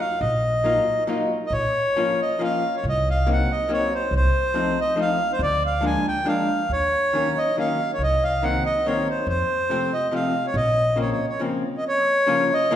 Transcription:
0.00 accordion F5
0.21 upright bass A#1, accordion D#5
0.64 hollow-body jazz guitar F#3 A#3 D#4 F4
1.07 hollow-body jazz guitar F#3 A#3 D#4 F4
1.46 accordion D#5
1.50 upright bass A#1, accordion C#5
1.96 hollow-body jazz guitar F3 A#3 C#4 F4
2.22 accordion D#5
2.39 hollow-body jazz guitar F3 A#3 C#4 F4
2.43 accordion F5
2.76 accordion C#5
2.84 upright bass C2
2.89 accordion D#5
3.10 accordion F5
3.27 hollow-body jazz guitar F#3 A#3 C4 D#4
3.33 accordion F#5
3.52 accordion D#5
3.69 hollow-body jazz guitar F#3 A#3 C4 D#4
3.73 accordion C#5
3.95 accordion C5
4.11 upright bass C2
4.16 accordion C5
4.54 hollow-body jazz guitar F3 A3 C4 D#4
4.81 accordion D#5
4.96 hollow-body jazz guitar F3 A3 C4 D#4
5.01 accordion F5
5.33 accordion C5
5.39 upright bass D2, accordion D5
5.66 accordion F5
5.81 hollow-body jazz guitar F3 G#3 A#3 D4
5.86 accordion G#5
6.08 accordion G5
6.24 hollow-body jazz guitar F3 G#3 A#3 D4, accordion F5
6.69 upright bass D#2, accordion C#5
7.13 hollow-body jazz guitar D#3 F#3 A#3 C#4
7.38 accordion D#5
7.57 hollow-body jazz guitar D#3 F#3 A#3 C#4, accordion F5
7.94 accordion C#5
7.98 upright bass C2
8.03 accordion D#5
8.24 accordion F5
8.43 hollow-body jazz guitar D#3 F#3 A#3 C4, accordion F#5
8.66 accordion D#5
8.86 hollow-body jazz guitar D#3 F#3 A#3 C4, accordion C#5
9.10 accordion C5
9.27 upright bass F2, accordion C5
9.69 hollow-body jazz guitar C3 F3 A3 C4
9.93 accordion D#5
10.11 hollow-body jazz guitar C3 F3 A3 C4, accordion F5
10.47 accordion C#5
10.54 upright bass A#1, accordion D#5
10.96 hollow-body jazz guitar C#3 F3 A#3 C4
11.01 accordion C#5
11.12 accordion C#5
11.29 accordion C#5
11.40 hollow-body jazz guitar C#3 F3 A#3 C4
11.77 accordion D#5
11.88 accordion C#5
12.27 hollow-body jazz guitar C#3 F3 A#3 C#4 F4
12.54 accordion D#5
12.71 hollow-body jazz guitar C#3 F3 A#3 C#4 F4

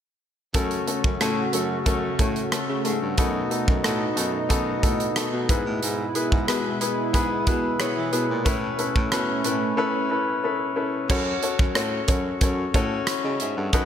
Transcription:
0.54 baritone saxophone F#2, analog synth pad C#3 A3 F#4, grand piano A3 C#4 F#4 A4, kick, closed hi-hat
0.71 closed hi-hat
0.87 grand piano A3 C#4 F#4 A4, closed hi-hat
1.04 baritone saxophone F#2, kick
1.20 baritone saxophone A2, grand piano A3 C#4 F#4 A4, cross-stick, closed hi-hat
1.53 baritone saxophone F#2, grand piano A3 C#4 F#4 A4, closed hi-hat
1.86 baritone saxophone F#2, grand piano A3 C#4 F#4 A4, kick, closed hi-hat
2.19 baritone saxophone A2, grand piano A3 C#4 F#4 A4, kick, closed hi-hat
2.36 closed hi-hat
2.52 grand piano A3 C#4 F#4 A4, cross-stick, closed hi-hat
2.69 baritone saxophone C#3
2.84 baritone saxophone G#2, grand piano A3 C#4 F#4 A4, closed hi-hat
3.02 baritone saxophone G2
3.17 baritone saxophone F#2, analog synth pad B2 D#4, grand piano B3 D#4 F#4 A4, kick, closed hi-hat
3.50 grand piano B3 D#4 F#4 A4, closed hi-hat
3.68 baritone saxophone F#2, kick
3.83 baritone saxophone A2, grand piano B3 D#4 F#4 A4, cross-stick, closed hi-hat
4.16 baritone saxophone F#2, grand piano B3 D#4 F#4 A4, closed hi-hat
4.49 baritone saxophone F#2, grand piano B3 D#4 F#4 A4, kick, closed hi-hat
4.82 baritone saxophone A2, grand piano B3 D#4 F#4 A4, kick, closed hi-hat
5.00 closed hi-hat
5.16 grand piano B3 D#4 F#4 A4, cross-stick, closed hi-hat
5.33 baritone saxophone B2
5.49 grand piano G#2 B3 E4 G#4 B4, baritone saxophone G#2, analog synth pad B2 G#3 E4, kick, closed hi-hat
5.66 baritone saxophone A2
5.83 baritone saxophone G#2, closed hi-hat
6.15 grand piano B3 E4 G#4 B4, closed hi-hat
6.32 baritone saxophone G#2, kick
6.47 baritone saxophone B2, grand piano B3 E4 G#4 B4, cross-stick, closed hi-hat
6.81 grand piano B3 E4 G#4 B4, closed hi-hat
7.13 baritone saxophone G#2, grand piano B3 E4 G#4 B4, kick, closed hi-hat
7.46 baritone saxophone B2, grand piano B3 E4 G#4 B4, kick, closed hi-hat
7.79 grand piano B3 E4 G#4 C#5, cross-stick, closed hi-hat
7.97 baritone saxophone E3
8.12 baritone saxophone B2, grand piano B3 E4 G#4 B4, closed hi-hat
8.30 baritone saxophone A#2
8.45 grand piano A2 C#4 E4 A4 B4, baritone saxophone A2, analog synth pad A3 C#4, kick, closed hi-hat
8.79 grand piano C#4 E4 A4 B4, closed hi-hat
8.96 baritone saxophone A2, kick
9.11 baritone saxophone B2, grand piano C#4 E4 A4 B4, cross-stick, closed hi-hat
9.44 baritone saxophone A2, grand piano C#4 E4 A4 B4, closed hi-hat
9.77 grand piano C#4 E4 A4 B4
10.10 grand piano C#4 E4 A4 B4
10.44 grand piano C#4 E4 A4 B4
10.76 grand piano C#4 E4 A4 B4
11.09 baritone saxophone F#2, grand piano C#4 F#4 A4 C#5, kick, crash
11.43 grand piano C#4 F#4 A4 C#5, closed hi-hat
11.59 baritone saxophone F#2, kick
11.75 baritone saxophone A2, grand piano C#4 F#4 A4 C#5, cross-stick, closed hi-hat
12.08 baritone saxophone F#2, grand piano C#4 F#4 A4 C#5, kick, closed hi-hat
12.41 baritone saxophone F#2, grand piano C#4 F#4 A4 C#5, kick, closed hi-hat
12.74 baritone saxophone A2, grand piano C#4 F#4 A4 C#5, kick, closed hi-hat
13.07 grand piano E4 C#5, cross-stick, closed hi-hat
13.24 baritone saxophone C#3, grand piano F#4 D#5
13.40 baritone saxophone G#2, grand piano G#4 E5, closed hi-hat
13.57 baritone saxophone G2, grand piano A4 F#5
13.73 baritone saxophone F#2, grand piano D#4 F#4 A4 B4, kick, closed hi-hat

